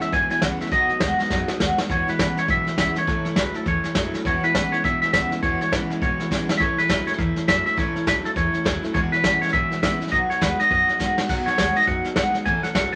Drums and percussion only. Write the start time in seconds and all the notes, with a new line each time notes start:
0.01 snare
0.12 kick, snare
0.30 snare
0.42 kick, snare, hi-hat pedal
0.60 snare
0.66 snare
0.71 kick, snare
0.89 snare
1.00 kick, snare, hi-hat pedal
1.19 snare
1.24 snare
1.30 kick, snare
1.48 snare
1.60 kick, snare, hi-hat pedal
1.78 snare
1.90 kick, snare
2.08 snare
2.19 kick, snare, hi-hat pedal
2.37 snare
2.48 kick, snare
2.67 snare
2.78 kick, snare, hi-hat pedal
2.95 snare
3.07 kick, snare
3.25 snare
3.36 kick, snare, hi-hat pedal
3.54 snare
3.65 kick, snare
3.84 snare
3.95 kick, snare, hi-hat pedal
4.14 snare
4.25 kick, snare
4.43 snare
4.55 kick, snare, hi-hat pedal
4.73 snare
4.84 kick, snare
5.02 snare
5.13 kick, snare, hi-hat pedal
5.31 snare
5.43 kick, snare
5.61 snare
5.72 kick, snare, hi-hat pedal
5.90 snare
6.02 kick, snare
6.20 snare
6.31 kick, snare, hi-hat pedal
6.49 snare
6.60 kick, snare
6.78 snare
6.89 kick, snare, hi-hat pedal
7.07 snare
7.13 snare
7.19 kick, snare
7.36 snare
7.48 kick, snare, hi-hat pedal
7.66 snare
7.78 kick, snare
7.96 snare
8.07 kick, snare, hi-hat pedal
8.25 snare
8.36 kick, snare
8.54 snare
8.65 kick, snare, hi-hat pedal
8.84 snare
8.95 kick, snare
9.13 snare
9.24 kick, snare, hi-hat pedal
9.42 snare
9.48 snare
9.53 kick, snare
9.71 snare
9.83 kick, snare, hi-hat pedal
10.01 snare
10.07 snare
10.12 kick, snare
10.31 snare
10.41 kick, snare, hi-hat pedal
10.59 snare
10.71 kick, snare
10.88 snare
11.00 kick, snare, hi-hat pedal
11.18 snare
11.29 kick, snare, crash
11.47 snare
11.58 kick, snare, hi-hat pedal
11.76 snare
11.82 snare
11.87 kick, snare
12.04 snare
12.16 kick, snare, hi-hat pedal
12.34 snare
12.46 kick, snare
12.63 snare
12.75 kick, snare, hi-hat pedal